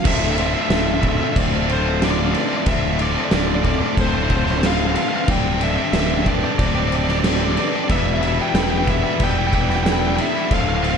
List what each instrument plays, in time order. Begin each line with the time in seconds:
0.04 fingered electric bass D1, overdriven electric guitar D2 A2 D3 A3 C4 F4, harmonium C4 F4 D5 A5, vibraphone C5, lead electric guitar E5, kick, crash
0.14 lead electric guitar E5
0.22 lead electric guitar E5
0.31 lead electric guitar E5
0.38 clean electric guitar A2, overdriven electric guitar D3 A3 C4 F4, lead electric guitar E5, crash
0.46 lead electric guitar E5
0.54 overdriven electric guitar D3 A3 C4 F4, lead electric guitar E5
0.62 lead electric guitar E5
0.69 fingered electric bass D1, overdriven electric guitar D2 A2 D3 A3 C4, vibraphone A4, lead electric guitar E5, snare, crash
0.73 overdriven electric guitar F4
0.78 lead electric guitar E5
0.86 lead electric guitar E5
0.94 lead electric guitar E5
1.01 overdriven electric guitar D3 A3 C4, lead electric guitar E5, kick, crash
1.06 overdriven electric guitar F4, lead electric guitar E5
1.18 overdriven electric guitar A3 C4 F4, lead electric guitar E5
1.22 overdriven electric guitar D3, lead electric guitar E5
1.33 fingered electric bass D1, clean electric guitar A3, lead electric guitar E5, kick, crash
1.39 lead electric guitar D5
1.53 overdriven electric guitar D3 A3 C4 F4
1.68 overdriven electric guitar D3 A3 C4 F4, vibraphone C5, crash
1.73 lead electric guitar C5
1.84 distorted electric guitar D3 A3 C4 F4
2.00 overdriven electric guitar D2 A2 D3 A3 C4 F4, lead electric guitar D5, snare, crash
2.11 lead electric guitar D5
2.18 overdriven electric guitar D3 A3 C4 F4, lead electric guitar D5
2.27 lead electric guitar D5
2.34 overdriven electric guitar D3 A3 C4 F4, vibraphone B4, lead electric guitar D5, crash
2.41 lead electric guitar D5
2.49 overdriven electric guitar D3 A3 C4 F4, lead electric guitar D5
2.58 lead electric guitar D5
2.66 fingered electric bass D1, overdriven electric guitar D2 A2 D3 A3 C4 F4, vibraphone C5, lead electric guitar E5, kick, crash
2.98 clean electric guitar A2, overdriven electric guitar D3 A3 C4 F4, lead electric guitar D5, crash
3.10 lead electric guitar D5
3.15 overdriven electric guitar D3 A3 C4 F4, lead electric guitar D5
3.25 lead electric guitar D5
3.31 fingered electric bass D1, overdriven electric guitar D2 A2 D3 A3 C4 F4, vibraphone A4, lead electric guitar D5, snare, crash
3.41 lead electric guitar D5
3.48 lead electric guitar D5
3.55 lead electric guitar D5
3.64 overdriven electric guitar D3 A3 C4 F4, lead electric guitar D5, kick, crash
3.70 lead electric guitar D5
3.79 overdriven electric guitar D3 A3 C4 F4, lead electric guitar D5
3.87 lead electric guitar D5
3.96 fingered electric bass D1, clean electric guitar A3, vibraphone C5, kick, crash
4.01 lead electric guitar C5
4.08 lead electric guitar C5
4.13 overdriven electric guitar D3 A3 C4 F4, lead electric guitar C5
4.23 lead electric guitar C5
4.29 overdriven electric guitar D3 A3 C4 F4, lead electric guitar C5, vibraphone C5, kick, crash
4.36 lead electric guitar C5
4.45 distorted electric guitar D3 A3 C4 F4, lead electric guitar C5, snare
4.51 lead electric guitar C5
4.58 overdriven electric guitar D2, lead electric guitar C5
4.62 overdriven electric guitar A2 D3 A3 C4 F4, lead electric guitar F5, snare, crash
4.73 lead electric guitar F5
4.78 overdriven electric guitar D3 A3 C4 F4, lead electric guitar F5
4.88 lead electric guitar F5
4.95 overdriven electric guitar D3 A3 C4 F4, vibraphone B4, lead electric guitar F5, crash
5.03 lead electric guitar F5
5.09 overdriven electric guitar C4 F4, lead electric guitar F5
5.13 overdriven electric guitar D3 A3, lead electric guitar F5
5.25 fingered electric bass D1, overdriven electric guitar G2 D3, vibraphone D5, lead electric guitar F5, harmonium G5, kick, crash
5.29 overdriven electric guitar G3 C4 D4 G4, harmonium G4, lead electric guitar G5
5.61 clean electric guitar D3, overdriven electric guitar G3 C4 D4 G4, lead electric guitar E5, crash
5.71 lead electric guitar E5
5.77 overdriven electric guitar G3 C4 D4 G4, lead electric guitar E5
5.85 lead electric guitar E5
5.93 fingered electric bass D1, overdriven electric guitar G2 D3 G3 C4 D4 G4, vibraphone B4, lead electric guitar E5, snare, crash
6.00 lead electric guitar E5
6.07 lead electric guitar E5
6.14 lead electric guitar E5
6.23 overdriven electric guitar G3, lead electric guitar E5, kick, crash
6.27 overdriven electric guitar C4 D4 G4, lead electric guitar D5
6.35 lead electric guitar D5
6.42 overdriven electric guitar G3 C4 D4 G4, lead electric guitar D5
6.51 lead electric guitar D5
6.59 fingered electric bass D1, clean electric guitar C4, vibraphone C5, lead electric guitar D5, kick, crash
6.66 lead electric guitar D5
6.74 overdriven electric guitar G3 C4 D4 G4, lead electric guitar D5
6.80 lead electric guitar D5
6.88 overdriven electric guitar G3, vibraphone C5, lead electric guitar D5, crash
6.93 overdriven electric guitar C4 D4 G4, lead electric guitar D5
7.05 lead electric guitar D5, snare
7.09 distorted electric guitar G3 C4 D4 G4, lead electric guitar D5
7.20 overdriven electric guitar G2, lead electric guitar D5
7.24 overdriven electric guitar D3 G3 C4 D4 G4, lead electric guitar D5, snare, crash
7.36 lead electric guitar D5
7.40 overdriven electric guitar G3 C4 D4 G4
7.44 lead electric guitar D5
7.52 overdriven electric guitar G3, lead electric guitar D5
7.57 overdriven electric guitar C4 D4 G4, vibraphone B4, lead electric guitar D5, crash
7.68 overdriven electric guitar D4 G4, lead electric guitar D5
7.73 overdriven electric guitar G3 C4, lead electric guitar D5
7.84 overdriven electric guitar E2, lead electric guitar D5
7.88 fingered electric bass E1, overdriven electric guitar B2 E3 G3 B3 E4, vibraphone D5, lead electric guitar E5, harmonium B5, kick, crash
7.92 harmonium E5
7.99 lead electric guitar E5
8.06 lead electric guitar E5
8.14 lead electric guitar E5
8.21 clean electric guitar B2, overdriven electric guitar E3 G3 B3 E4, lead electric guitar E5, crash
8.28 lead electric guitar E5
8.36 overdriven electric guitar E3 G3 B3 E4
8.41 distorted electric guitar E3 B3, lead electric guitar G5
8.50 overdriven electric guitar E2 B2, lead electric guitar G5
8.54 fingered electric bass E1, overdriven electric guitar E3 G3 B3 E4, vibraphone B4, lead electric guitar G5, snare, crash
8.63 lead electric guitar G5
8.71 lead electric guitar G5
8.79 lead electric guitar G5
8.86 overdriven electric guitar E3 G3 B3 E4, lead electric guitar E5, kick, crash
9.02 overdriven electric guitar E3 G3 B3 E4
9.20 fingered electric bass E1, clean electric guitar G3, vibraphone D5, lead electric guitar G5, kick, crash
9.31 overdriven electric guitar E4, lead electric guitar G5
9.35 overdriven electric guitar E3 G3 B3, lead electric guitar G5
9.47 lead electric guitar G5
9.52 overdriven electric guitar E3 G3 B3 E4, lead electric guitar G5, kick, crash
9.62 lead electric guitar G5
9.70 distorted electric guitar E3 G3 B3 E4, lead electric guitar G5, snare
9.76 lead electric guitar G5
9.84 overdriven electric guitar E2 B2 E3 G3 B3 E4, lead electric guitar G5, snare, crash
9.93 lead electric guitar G5
9.99 overdriven electric guitar G3 B3 E4, lead electric guitar G5
10.04 overdriven electric guitar E3, lead electric guitar G5
10.16 overdriven electric guitar E3 G3 B3 E4, vibraphone B4, lead electric guitar G5, crash
10.21 lead electric guitar E5
10.34 overdriven electric guitar E3 G3 B3 E4
10.50 fingered electric bass D1, overdriven electric guitar D2 A2 D3 A3 C4 F4, harmonium C4 F4 A5, vibraphone C5, kick, crash
10.54 lead electric guitar F5
10.61 lead electric guitar F5
10.69 lead electric guitar F5
10.75 lead electric guitar F5
10.83 clean electric guitar A2, overdriven electric guitar D3 A3 C4 F4, lead electric guitar F5, crash
10.90 lead electric guitar F5